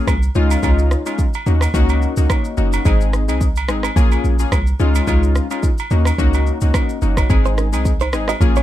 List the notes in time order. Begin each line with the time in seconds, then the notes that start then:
Already playing: A#3 C#4 F4 G#4
0.07 C2, kick, cross-stick, high agogo, shaker
0.23 shaker
0.35 C#2 G#3 C#4 D#4 F4, shaker
0.51 high agogo, shaker
0.63 C#2 G#3 C#4 D#4 F4, kick, high agogo, shaker
0.79 shaker
0.91 cross-stick, shaker
1.06 G#3 C#4 D#4 F4, high agogo, shaker
1.19 kick, shaker
1.34 high agogo, shaker
1.46 D#2 A#3 C#4 D#4 F#4, shaker
1.61 cross-stick, high agogo, shaker
1.74 C#2 A#3 C#4 D#4 F#4, kick, shaker
1.89 high agogo, shaker
2.02 shaker
2.17 C#2 A#3 C#4 D#4 F#4, shaker
2.30 kick, cross-stick, high agogo, shaker
2.45 shaker
2.57 F#1 A#3 C#4 D#4 F#4, shaker
2.73 high agogo, shaker
2.85 G#1 G#3 C4 D#4 G#4, kick, high agogo, shaker
3.01 shaker
3.13 cross-stick, shaker
3.28 C2 G#3 C4 D#4 G#4, high agogo, shaker
3.41 kick, shaker
3.56 high agogo, shaker
3.68 G#1 G#3 C4 D#4 G#4, cross-stick, shaker
3.83 cross-stick, high agogo, shaker
3.96 A#1 A#3 C#4 F4 G#4, kick, shaker
4.12 high agogo, shaker
4.24 A#1, shaker
4.39 A#3 C#4 F4 G#4, shaker
4.52 C2, kick, cross-stick, high agogo, shaker
4.67 shaker
4.79 C#2 G#3 C#4 D#4 F4, shaker
4.95 high agogo, shaker
5.07 C#2 G#3 C#4 D#4 F4, kick, high agogo, shaker
5.23 shaker
5.35 cross-stick, shaker
5.51 G#3 C#4 D#4 F4, high agogo, shaker
5.63 kick, shaker
5.78 high agogo, shaker
5.91 D#2 A#3 C#4 D#4 F#4, shaker
6.05 cross-stick, high agogo, shaker
6.18 C#2 A#3 C#4 D#4 F#4, kick, shaker
6.34 high agogo, shaker
6.47 shaker
6.61 C#2 A#3 C#4 D#4 F#4, shaker
6.74 kick, cross-stick, high agogo, shaker
6.89 shaker
7.02 F#1 A#3 C#4 D#4 F#4, shaker
7.17 kick, cross-stick, high agogo, shaker
7.29 G#1 G#3 C4 D#4 G#4, kick, high agogo, shaker
7.45 D#4 C5, shaker
7.58 C#4 A#4, cross-stick, shaker
7.72 C2 G#3 C4 D#4 G#4, high agogo, shaker
7.85 kick, shaker
8.00 D#4 C5, high agogo, shaker
8.13 G#1 G#3 C4 D#4 G#4, cross-stick, shaker
8.28 F#4 D#5, cross-stick, high agogo, shaker
8.41 A#1 A#3 C#4 F4 G#4, kick, shaker
8.56 F4 C#5, high agogo, shaker